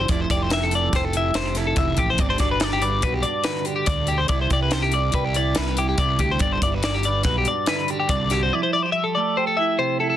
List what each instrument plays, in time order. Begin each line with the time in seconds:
Already playing: clean electric guitar G3
0.08 fingered electric bass F1, clean electric guitar F3 E4 D5, kick, closed hi-hat
0.21 clean electric guitar C5
0.29 fingered electric bass F1, clean electric guitar G4 D5, kick, closed hi-hat
0.43 clean electric guitar C5
0.50 clean electric guitar E5, snare, closed hi-hat
0.63 clean electric guitar A4
0.71 clean electric guitar A3 A4 D5, closed hi-hat
0.92 fingered electric bass F1, clean electric guitar G4 C5, kick, snare, closed hi-hat
1.05 clean electric guitar A4
1.13 clean electric guitar E4 E5, closed hi-hat
1.34 fingered electric bass F1, clean electric guitar C3 E4 C5, snare, closed hi-hat
1.46 clean electric guitar G4
1.55 clean electric guitar E4 A4, snare, closed hi-hat
1.67 clean electric guitar A4
1.76 fingered electric bass F1, clean electric guitar E3 E5, kick, closed hi-hat
1.97 fingered electric bass A1, clean electric guitar F3 G4, kick, closed hi-hat
2.10 clean electric guitar C5
2.18 fingered electric bass G1, clean electric guitar G2 C4 D5, kick, closed hi-hat
2.29 clean electric guitar D4 C5
2.38 fingered electric bass G1, clean electric guitar F#4 D5, kick, snare, closed hi-hat
2.51 clean electric guitar B4
2.60 clean electric guitar D5, snare, closed hi-hat
2.73 clean electric guitar G4
2.81 clean electric guitar G3 B4 D5, closed hi-hat
3.02 fingered electric bass B1, clean electric guitar F#4 B4, kick, closed hi-hat
3.14 clean electric guitar G4
3.23 clean electric guitar D4 D5, closed hi-hat
3.44 clean electric guitar D3 F#4 B4, snare, closed hi-hat
3.65 clean electric guitar D4 G4, closed hi-hat
3.76 clean electric guitar G4
3.86 fingered electric bass D2, clean electric guitar A2 D5, kick, closed hi-hat
4.07 clean electric guitar B2 G4, closed hi-hat
4.18 clean electric guitar C5
4.28 fingered electric bass C2, clean electric guitar C3 E4 D5, kick, closed hi-hat
4.41 clean electric guitar C5
4.50 fingered electric bass C2, clean electric guitar G4 D5, kick, closed hi-hat
4.63 clean electric guitar B4
4.71 clean electric guitar C5, snare, closed hi-hat
4.83 clean electric guitar G4
4.92 clean electric guitar G3 D5, closed hi-hat
5.12 fingered electric bass C2, clean electric guitar G4 B4, kick, closed hi-hat
5.25 clean electric guitar G4
5.34 clean electric guitar E4 D5, closed hi-hat
5.55 fingered electric bass C2, clean electric guitar G3 E4 B4, snare, closed hi-hat
5.67 clean electric guitar G4
5.77 clean electric guitar E4 G4, closed hi-hat
5.89 clean electric guitar G4
5.98 fingered electric bass C2, clean electric guitar C3 E4 D5, kick, closed hi-hat
6.19 fingered electric bass D2, clean electric guitar G4, kick, closed hi-hat
6.31 clean electric guitar C5
6.39 fingered electric bass G1, clean electric guitar G2 D4 D5, kick, closed hi-hat
6.53 clean electric guitar C5
6.62 fingered electric bass G1, clean electric guitar E4 D5, kick, closed hi-hat
6.73 clean electric guitar F#4 B4
6.83 clean electric guitar D5, snare, closed hi-hat
6.94 clean electric guitar G4
7.03 clean electric guitar G3 B4 D5, closed hi-hat
7.23 fingered electric bass B1, clean electric guitar F#4 B4, kick, snare, closed hi-hat
7.38 clean electric guitar G4
7.45 clean electric guitar D4 D5, closed hi-hat
7.66 clean electric guitar D3 E4 B4, snare, closed hi-hat
7.79 clean electric guitar F#4
7.88 clean electric guitar D4 G4, closed hi-hat
8.00 clean electric guitar G4
8.09 fingered electric bass C2, clean electric guitar G2 D4 D5, kick, closed hi-hat
8.30 clean electric guitar F#4 G4, snare, closed hi-hat
8.43 clean electric guitar C5
8.53 clean electric guitar F3 E4 D5
8.63 clean electric guitar C5
8.73 clean electric guitar E4 D5
8.83 clean electric guitar G4 C5
8.92 clean electric guitar E5
9.04 clean electric guitar A4
9.15 clean electric guitar A3 A4 D5
9.37 clean electric guitar G4 C5
9.47 clean electric guitar A4
9.57 clean electric guitar E4 E5
9.78 clean electric guitar C3 G4 C5
10.00 clean electric guitar E4 A4
10.10 clean electric guitar A4